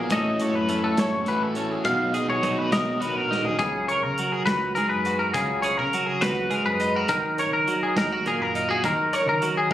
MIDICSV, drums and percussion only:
0, 0, Header, 1, 2, 480
1, 0, Start_track
1, 0, Tempo, 581959
1, 91, Time_signature, 6, 3, 24, 8
1, 8028, End_track
2, 0, Start_track
2, 0, Title_t, "Drums"
2, 82, Note_on_c, 9, 42, 80
2, 87, Note_on_c, 9, 36, 100
2, 165, Note_off_c, 9, 42, 0
2, 169, Note_off_c, 9, 36, 0
2, 326, Note_on_c, 9, 42, 66
2, 409, Note_off_c, 9, 42, 0
2, 566, Note_on_c, 9, 42, 59
2, 649, Note_off_c, 9, 42, 0
2, 804, Note_on_c, 9, 42, 86
2, 809, Note_on_c, 9, 38, 107
2, 887, Note_off_c, 9, 42, 0
2, 892, Note_off_c, 9, 38, 0
2, 1040, Note_on_c, 9, 42, 60
2, 1123, Note_off_c, 9, 42, 0
2, 1280, Note_on_c, 9, 42, 60
2, 1363, Note_off_c, 9, 42, 0
2, 1522, Note_on_c, 9, 42, 71
2, 1525, Note_on_c, 9, 36, 101
2, 1605, Note_off_c, 9, 42, 0
2, 1607, Note_off_c, 9, 36, 0
2, 1765, Note_on_c, 9, 42, 67
2, 1847, Note_off_c, 9, 42, 0
2, 2006, Note_on_c, 9, 36, 68
2, 2007, Note_on_c, 9, 42, 54
2, 2088, Note_off_c, 9, 36, 0
2, 2089, Note_off_c, 9, 42, 0
2, 2245, Note_on_c, 9, 42, 75
2, 2250, Note_on_c, 9, 38, 112
2, 2328, Note_off_c, 9, 42, 0
2, 2333, Note_off_c, 9, 38, 0
2, 2488, Note_on_c, 9, 42, 52
2, 2570, Note_off_c, 9, 42, 0
2, 2735, Note_on_c, 9, 38, 50
2, 2817, Note_off_c, 9, 38, 0
2, 2843, Note_on_c, 9, 43, 74
2, 2926, Note_off_c, 9, 43, 0
2, 2960, Note_on_c, 9, 42, 63
2, 2963, Note_on_c, 9, 36, 94
2, 3043, Note_off_c, 9, 42, 0
2, 3046, Note_off_c, 9, 36, 0
2, 3207, Note_on_c, 9, 42, 56
2, 3289, Note_off_c, 9, 42, 0
2, 3445, Note_on_c, 9, 42, 54
2, 3527, Note_off_c, 9, 42, 0
2, 3685, Note_on_c, 9, 36, 74
2, 3685, Note_on_c, 9, 42, 75
2, 3690, Note_on_c, 9, 38, 93
2, 3767, Note_off_c, 9, 36, 0
2, 3767, Note_off_c, 9, 42, 0
2, 3772, Note_off_c, 9, 38, 0
2, 3925, Note_on_c, 9, 42, 59
2, 4008, Note_off_c, 9, 42, 0
2, 4165, Note_on_c, 9, 42, 53
2, 4248, Note_off_c, 9, 42, 0
2, 4405, Note_on_c, 9, 42, 80
2, 4408, Note_on_c, 9, 36, 93
2, 4488, Note_off_c, 9, 42, 0
2, 4490, Note_off_c, 9, 36, 0
2, 4645, Note_on_c, 9, 42, 58
2, 4728, Note_off_c, 9, 42, 0
2, 4892, Note_on_c, 9, 42, 52
2, 4975, Note_off_c, 9, 42, 0
2, 5128, Note_on_c, 9, 42, 76
2, 5130, Note_on_c, 9, 36, 71
2, 5133, Note_on_c, 9, 38, 106
2, 5210, Note_off_c, 9, 42, 0
2, 5213, Note_off_c, 9, 36, 0
2, 5215, Note_off_c, 9, 38, 0
2, 5367, Note_on_c, 9, 42, 54
2, 5449, Note_off_c, 9, 42, 0
2, 5607, Note_on_c, 9, 42, 55
2, 5689, Note_off_c, 9, 42, 0
2, 5843, Note_on_c, 9, 42, 70
2, 5849, Note_on_c, 9, 36, 94
2, 5925, Note_off_c, 9, 42, 0
2, 5932, Note_off_c, 9, 36, 0
2, 6089, Note_on_c, 9, 42, 56
2, 6172, Note_off_c, 9, 42, 0
2, 6331, Note_on_c, 9, 42, 46
2, 6414, Note_off_c, 9, 42, 0
2, 6570, Note_on_c, 9, 36, 75
2, 6574, Note_on_c, 9, 42, 70
2, 6579, Note_on_c, 9, 38, 111
2, 6653, Note_off_c, 9, 36, 0
2, 6656, Note_off_c, 9, 42, 0
2, 6661, Note_off_c, 9, 38, 0
2, 6811, Note_on_c, 9, 42, 48
2, 6893, Note_off_c, 9, 42, 0
2, 7054, Note_on_c, 9, 42, 58
2, 7137, Note_off_c, 9, 42, 0
2, 7289, Note_on_c, 9, 42, 71
2, 7290, Note_on_c, 9, 36, 93
2, 7372, Note_off_c, 9, 36, 0
2, 7372, Note_off_c, 9, 42, 0
2, 7532, Note_on_c, 9, 42, 58
2, 7614, Note_off_c, 9, 42, 0
2, 7769, Note_on_c, 9, 42, 60
2, 7851, Note_off_c, 9, 42, 0
2, 8028, End_track
0, 0, End_of_file